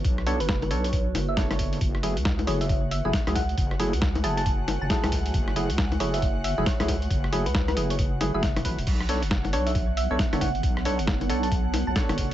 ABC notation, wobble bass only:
X:1
M:4/4
L:1/16
Q:"Swing 16ths" 1/4=136
K:F#m
V:1 name="Wobble bass" clef=bass
B,,,3 F,,,3 B,,,4 F,,,6 | F,,,3 C,,3 F,,,4- F,,, F,,, z C,,3 | F,,,3 C,,3 F,,,4- F,,, F,,, z C,,3 | F,,,3 C,,3 F,,,4- F,,, F,,, z C,,3 |
F,,,3 C,,3 F,,,4- F,,, F,,,2 E,,, A,,, E,,, | B,,,3 F,,,3 B,,,4- B,,, B,,, z F,,,3 | B,,,3 F,,,3 B,,,4- B,,, B,,, z F,,,3 |]